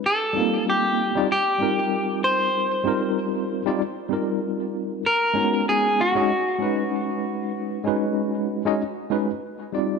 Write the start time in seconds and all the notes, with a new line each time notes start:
0.06 A4
0.33 G3 C4 D#4 F4
0.37 A#3
0.70 G4
1.15 G3 C4 D#4 F4 D5
1.32 G4
1.59 G3 C4 D#4 F4 A#4
2.24 C5
2.84 G3 C4 D#4 F4
2.88 A#4
3.66 G3 C4 D#4 F4 D5
4.09 G3 C4 D#4 F4 A#4
5.06 A#4
5.34 G#3 B3 C#4 D#4 F#4
5.69 G#4
6.01 F#4
6.15 G#3 C#4 D#4 F#4 D#5
6.58 G#3 C#4 D#4 F#4 B4
7.84 G#3 C#4 D#4 F#4 B4
8.65 G#3 C#4 D#4 F#4 D#5
9.10 G#3 C#4 D#4 F#4 B4
9.72 G3 C4 D#4 F4 D5